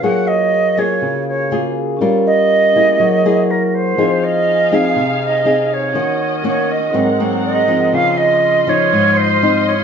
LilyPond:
<<
  \new Staff \with { instrumentName = "Flute" } { \time 4/4 \key des \major \tempo 4 = 122 ges''8 ees''4 des''4 des''4 r8 | r8 ees''2~ ees''8 bes'8 c''8~ | c''8 ees''4 f''4 ees''4 des''8~ | des''4 des''8 ees''4 r8 ees''4 |
f''8 ees''4 des''4 c''4 des''8 | }
  \new Staff \with { instrumentName = "Vibraphone" } { \time 4/4 \key des \major <ges' aes' bes' f''>2. <ges' aes' bes' f''>4 | <des' g' bes' f''>2 <fes' aes' bes' ges''>2 | <ees' aes' c'' f''>1 | <ees' bes' des'' ges''>2 <c' aes' bes' ges''>2 |
<f' ees'' c'''>1 | }
  \new Staff \with { instrumentName = "String section" } { \time 4/4 \key des \major r1 | r1 | <ees' aes' f''>1 | <des' ges' ees''>2 <c' aes' bes' ges''>2 |
<f' ees'' c'''>1 | }
  \new Staff \with { instrumentName = "Nylon-string guitar" } { \time 4/4 \key des \major << { <bes f' aes'>4 r8 <bes f' aes'>4. <bes f' aes'>4 | <des' f' bes'>4. <bes fes' aes'>4 <bes fes' aes'>4. | <c' ees' aes'>4. <c' ees' aes'>4. <c' ees' aes'>4 | <bes des' ges'>4 <bes des' ges'>8 r8 <ges bes c'>8 <ges bes c'>4 <f c' ees'>8~ |
<f c' ees'>4. <f ees'>4. <f c' ees'>8 r8 | } \\ { ges2 des2 | g2 ges2 | f2 c2 | ees2 aes,2 |
des2 aes,2 | } >> }
>>